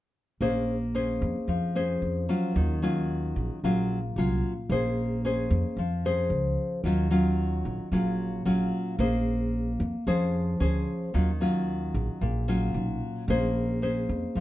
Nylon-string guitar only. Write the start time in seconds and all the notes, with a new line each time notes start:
0.41 A#3 C#4 G#4 C5
0.95 C#4 G#4 C5
1.49 F3
1.75 C#4 G#4 C5
2.29 F#3 C#4 F4
2.56 D#3
2.82 F#3 C#4 F4
3.64 A#2 F#3 C#4 F4
4.18 F#3 C#4 F4
4.70 A#3 C#4 G#4 C5
5.25 C#4 G#4 C5
5.78 F3
6.05 C#4 G#4 C5
6.85 D#3 F#3 C#4 F4
7.11 F#3 C#4 F4
7.92 A#2 F#3 C#4 F4
8.45 F#3 C#4 F4
8.99 A#3 C#4 G#4 C5
10.07 F3 C#4 G#4 C5
10.60 C#4 G#4 C5
11.14 D#3 F#3 C#4 F4
11.41 F#3 C#4 F4
12.21 A#2
12.48 F#3 C#4 F4
13.30 A#3 C#4 G#4 C5
13.82 C#4 G#4 C5
14.36 F3